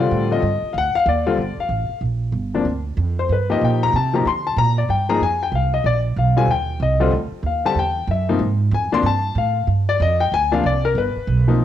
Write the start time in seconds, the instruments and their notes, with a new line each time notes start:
Already playing: grand piano D5
0.00 grand piano D3 G3 C4 F4
0.11 upright bass A2
0.31 grand piano D3 G3 C4 F4 D#5
0.42 upright bass G2
0.62 muted upright bass stroke
0.73 upright bass D2, grand piano F5
0.78 grand piano F#5
0.94 grand piano F5, muted upright bass stroke
1.06 upright bass D#2, grand piano D5
1.27 grand piano D3 G3 C4 F4
1.37 upright bass G1
1.57 grand piano F5, muted upright bass stroke
1.69 upright bass A1
1.89 muted upright bass stroke
2.01 upright bass A#1
2.32 upright bass G1
2.54 grand piano C3 F3 A#3 D4
2.65 upright bass D2
2.97 upright bass F2
3.19 grand piano C5
3.29 upright bass G2, grand piano B4
3.50 grand piano F3 A#3 D#4 G4 D#5
3.61 upright bass A#2, grand piano G5
3.83 grand piano A#5
3.93 upright bass C3, grand piano A5
4.13 grand piano F3 A#3 D#4 G4 A#5
4.25 upright bass D3, grand piano C6
4.47 grand piano A5
4.56 upright bass A#2, grand piano A#5
4.78 grand piano D5
4.89 upright bass G2, grand piano G5
5.09 grand piano F3 A#3 D#4 G#4 A#5
5.20 upright bass F2, grand piano G#5
5.43 grand piano G5
5.52 upright bass C2, grand piano F5
5.74 grand piano D#5
5.84 upright bass A#1, grand piano D5
6.16 upright bass B1, grand piano F5
6.37 grand piano D3 G3 C4 F4 G#5
6.48 upright bass D#2, grand piano G5
6.80 upright bass C2, grand piano D#5
7.00 grand piano D3 G3 C4 F4
7.11 upright bass D2
7.31 muted upright bass stroke
7.43 upright bass D#2, grand piano F5
7.65 grand piano D3 G3 C4 G4 A5
7.75 upright bass E2
7.79 grand piano G5
8.07 upright bass F#2, grand piano E5
8.29 grand piano C3 F3 A#3 D#4
8.39 upright bass G#2
8.71 upright bass F2, grand piano G#5
8.92 grand piano C3 F3 A#3 D4 C6, muted upright bass stroke
9.03 upright bass G2, grand piano A5
9.35 upright bass A2, grand piano F5
9.67 upright bass G2
9.89 grand piano D5
10.00 upright bass F2, grand piano D#5
10.20 grand piano G5
10.32 upright bass D2, grand piano G#5
10.51 grand piano C3 F3 A#3 D4 F5
10.63 upright bass C2, grand piano D5
10.85 grand piano A#4
10.95 upright bass G1, grand piano B4
11.16 muted upright bass stroke
11.27 upright bass B1
11.48 grand piano C3 F3 A#3 D#4